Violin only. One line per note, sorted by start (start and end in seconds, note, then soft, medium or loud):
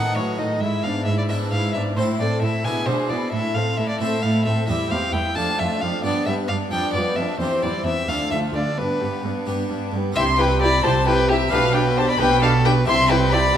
0.00 0.17 F#5 medium
0.16 0.40 C#5 medium
0.38 0.62 D#5 soft
0.61 0.85 E5 medium
0.83 1.05 F5 medium
1.05 1.17 E5 medium
1.18 1.23 D5 medium
1.29 1.37 E5 medium
1.51 1.73 F5 medium
1.74 1.82 E5 medium
1.97 2.05 C5 medium
2.19 2.41 D5 medium
2.42 2.66 E5 medium
2.64 2.88 G#5 medium
2.86 3.11 C5 medium
3.09 3.31 D5 medium
3.32 3.56 E5 medium
3.54 3.78 F5 medium
3.77 3.88 E5 medium
3.89 3.99 D5 medium
4.00 4.24 E5 medium
4.22 4.45 F5 medium
4.45 4.67 E5 medium
4.68 4.92 E5 medium
4.91 5.14 F5 medium
5.13 5.37 G5 medium
5.35 5.60 A5 medium
5.59 5.83 E5 medium
5.81 6.03 F5 medium
6.04 6.25 D5 medium
6.26 6.34 E5 medium
6.48 6.56 F5 medium
6.71 6.93 G5 medium
6.93 7.18 D5 medium
7.16 7.39 E5 medium
7.40 7.64 C5 medium
7.62 7.85 D5 medium
7.86 8.10 E5 medium
8.08 8.30 F5 medium
8.31 8.39 E5 medium
8.54 8.79 D5 medium
8.78 9.46 B4 medium
10.16 10.24 E5 medium
10.38 10.60 B4 medium
10.62 10.84 D5 medium
10.85 11.06 C5 medium
11.07 11.30 B4 medium
11.29 11.51 G4 medium
11.52 11.74 B4 medium
11.74 11.99 B4 medium
11.97 12.10 C5 medium
12.09 12.19 D5 medium
12.20 12.41 B4 medium
12.42 12.67 A4 medium
12.65 12.87 B4 medium
12.88 13.12 E5 medium
13.10 13.34 B4 medium
13.32 13.57 D5 medium